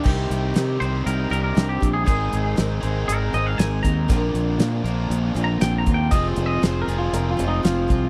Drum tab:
CC |x-------|--------|--------|--------|
HH |-xxxxxxx|xxxxxxxx|xxxxxxxx|xxxxxxxx|
SD |--o---o-|--o---o-|--o---o-|--o---o-|
BD |o------o|o------o|o------o|o------o|